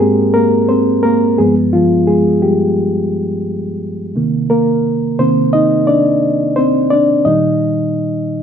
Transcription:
0.00 0.46 G#2 soft
0.00 0.33 G#3 medium
0.00 0.36 A#3 medium
0.00 0.71 C4 medium
0.00 0.47 G4 soft
0.00 0.36 G#4 medium
0.00 0.34 A#4 medium
0.00 0.69 C5 loud
0.34 0.68 A#3 medium
0.34 0.70 A#4 medium
0.69 0.86 C4 medium
0.69 0.84 C5 medium
1.03 1.37 A#3 medium
1.03 1.39 A#4 medium
1.38 2.39 G2 soft
1.38 1.74 F3 soft
1.38 1.56 G#3 medium
1.38 2.39 B3 medium
1.38 1.54 G#4 medium
1.73 2.07 F3 medium
1.73 2.09 F4 medium
2.07 2.41 G#3 medium
2.07 2.40 G#4 medium
2.42 3.43 G3 medium
2.42 3.42 G4 medium
4.15 5.18 C3 soft
4.15 5.18 D#3 soft
4.15 4.50 A#3 medium
4.50 5.15 A#3 medium
4.50 5.21 A#4 medium
5.19 5.50 C3 soft
5.19 5.50 D#3 soft
5.19 5.51 A#3 soft
5.19 5.52 C4 medium
5.19 5.55 C5 medium
5.53 5.86 D#4 medium
5.53 5.85 D#5 medium
5.87 6.54 D4 medium
5.87 6.59 D5 medium
6.56 6.90 C4 medium
6.56 6.92 C5 medium
6.91 7.24 D4 medium
6.91 7.27 D5 medium
7.25 8.43 A#2 medium
7.25 8.43 D#3 soft
7.25 8.43 G3 medium
7.25 8.26 D#4 medium
7.25 8.25 D#5 medium

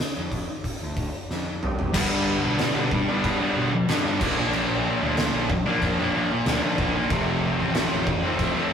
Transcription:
0.00 snare medium
0.17 0.43 F2 medium
0.32 kick medium
0.32 open hi-hat soft
0.64 kick medium
0.64 open hi-hat soft
0.82 1.08 D2 medium
0.97 kick medium
0.97 open hi-hat soft
1.30 1.59 F2 medium
1.30 snare medium
1.63 1.92 G2 medium
1.63 mid tom medium
1.79 floor tom medium
1.93 2.58 G2 medium
1.93 2.34 G2 loud
1.93 2.58 D3 medium
1.93 2.44 G3 loud
1.93 2.42 B3 medium
1.93 2.42 D4 loud
1.93 kick loud
1.93 crash loud
1.93 crash medium
2.42 2.70 B2 medium
2.42 2.59 G3 medium
2.42 2.59 B3 medium
2.42 2.61 D4 medium
2.59 3.24 G2 medium
2.59 2.90 D3 medium
2.59 2.91 G3 medium
2.59 2.92 B3 medium
2.59 2.92 D4 loud
2.59 snare loud
2.59 crash medium
2.76 3.02 B2 medium
2.91 muted distorted electric guitar stroke soft
2.91 kick medium
3.08 3.41 G3 medium
3.08 3.40 B3 medium
3.08 3.39 D4 medium
3.24 3.37 G3 medium
3.24 kick medium
3.24 crash medium
3.40 3.56 G3 medium
3.40 3.56 B3 medium
3.40 3.57 D4 medium
3.56 3.83 B2 medium
3.56 3.72 D3 medium
3.56 3.71 G3 medium
3.56 3.71 B3 medium
3.56 3.71 D4 medium
3.72 muted distorted electric guitar stroke medium
3.88 4.19 G2 medium
3.88 4.19 D3 medium
3.88 4.20 G3 medium
3.88 4.20 B3 medium
3.88 4.20 D4 loud
3.88 snare loud
3.88 crash medium
4.05 4.18 G2 medium
4.20 4.87 A#1 loud
4.20 4.52 A#2 loud
4.20 4.39 F3 loud
4.20 4.37 A#3 loud
4.20 4.36 D4 loud
4.20 kick loud
4.20 crash loud
4.37 4.53 F3 medium
4.37 4.53 A#3 medium
4.37 4.54 D4 medium
4.53 5.16 A#2 medium
4.53 5.03 F3 medium
4.53 5.01 A#3 medium
4.53 5.00 D4 medium
4.53 crash medium
5.01 5.28 D2 medium
5.01 5.18 F3 medium
5.01 5.18 A#3 medium
5.01 5.18 D4 medium
5.17 5.49 A#2 medium
5.17 5.50 F3 loud
5.17 5.50 A#3 medium
5.17 5.50 D4 loud
5.17 snare loud
5.17 crash medium
5.34 5.61 A#1 medium
5.50 muted distorted electric guitar stroke medium
5.50 kick medium
5.66 6.00 F3 medium
5.66 5.99 A#3 medium
5.66 5.97 D4 medium
5.82 6.08 F2 loud
5.82 kick medium
5.82 crash medium
5.98 6.15 F3 medium
5.98 6.15 A#3 medium
5.98 6.16 D4 medium
6.15 6.46 A#2 medium
6.15 6.31 F3 medium
6.15 6.31 A#3 medium
6.15 6.30 D4 medium
6.32 muted distorted electric guitar stroke medium
6.46 6.60 D2 loud
6.46 6.78 A#2 medium
6.46 6.79 F3 medium
6.46 6.80 A#3 medium
6.46 6.81 D4 loud
6.46 snare loud
6.46 crash medium
6.78 7.05 A#1 loud
6.78 7.09 A#2 medium
6.78 6.96 F3 medium
6.78 6.95 A#3 medium
6.78 6.94 D4 medium
6.78 kick loud
6.95 7.10 F3 medium
6.95 7.10 A#3 medium
6.95 7.09 D4 medium
7.10 7.50 F1 loud
7.10 7.73 F2 medium
7.10 7.74 C3 loud
7.10 7.60 F3 loud
7.10 7.59 A3 loud
7.10 7.59 C4 loud
7.10 kick loud
7.10 crash medium
7.59 7.85 A1 medium
7.59 7.74 F3 medium
7.59 7.75 A3 medium
7.59 7.76 C4 medium
7.75 8.39 F2 medium
7.75 8.07 C3 medium
7.75 8.07 F3 medium
7.75 8.07 A3 loud
7.75 8.09 C4 loud
7.75 snare loud
7.75 crash medium
7.91 8.17 A1 medium
8.07 muted distorted electric guitar stroke soft
8.07 kick medium
8.23 8.56 F3 medium
8.23 8.55 A3 medium
8.23 8.54 C4 medium
8.39 8.52 F2 medium
8.39 kick medium
8.39 crash medium
8.55 8.71 F3 medium
8.55 8.72 A3 medium
8.55 8.73 C4 medium

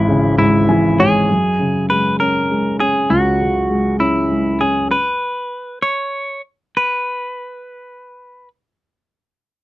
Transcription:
0.00 1.26 G#1 medium
0.00 0.38 G#2 medium
0.00 0.09 C#3 medium
0.00 0.69 E3 medium
0.00 0.37 E4 medium
0.09 1.26 C#3 medium
0.38 0.98 G#2 medium
0.38 1.01 E4 medium
0.69 1.27 E3 medium
0.69 0.97 G#5 medium
0.99 1.29 G#2 medium
0.99 1.89 G#4 medium
0.99 1.27 C#5 medium
1.29 3.06 F#2 medium
1.59 2.76 C#3 soft
1.90 2.49 G#3 soft
1.90 2.20 B4 medium
2.20 2.79 C#4 soft
2.20 2.80 A#4 medium
2.50 3.66 G#3 soft
2.80 3.97 C#4 soft
2.80 3.11 G#4 medium
3.10 4.86 C#2 medium
3.10 4.00 F#4 medium
3.41 4.57 C#3 soft
3.70 4.29 G#3 soft
4.00 4.59 C#4 soft
4.00 4.62 E4 medium
4.30 4.88 G#3 soft
4.60 4.89 C#4 medium
4.60 4.91 G#4 medium
4.91 5.82 B4 medium
5.82 6.41 C#5 medium
6.77 8.48 B4 medium

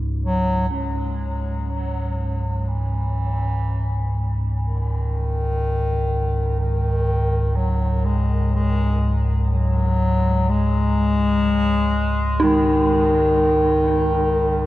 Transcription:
0.00 0.69 C#2 medium
0.00 0.69 G#2 medium
0.00 0.71 F#4 medium
0.24 0.75 F#3 loud
0.70 14.66 C#2 medium
0.70 14.66 G#2 medium
0.70 1.72 G#3 loud
0.70 6.58 C#4 soft
1.70 2.70 F#3 loud
2.68 4.36 E3 loud
4.64 6.54 D#3 loud
6.59 7.57 D#3 medium
7.56 8.07 F#3 medium
8.05 8.53 G#3 loud
8.55 9.19 G#3 loud
9.53 10.50 F#3 loud
10.49 12.44 G#3 loud
12.40 14.66 D#3 medium
12.40 14.66 D#4 medium

